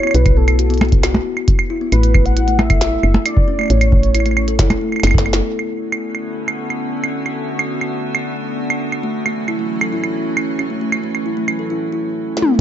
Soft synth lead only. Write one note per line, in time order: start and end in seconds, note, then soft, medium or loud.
0.00 0.16 C#5 medium
0.15 0.39 B4 loud
0.37 1.04 A4 medium
1.92 2.27 B4 loud
2.25 2.60 F#5 loud
2.59 2.81 E5 loud
2.81 3.23 E5 loud
3.26 3.72 D5 loud
3.70 5.04 C#5 loud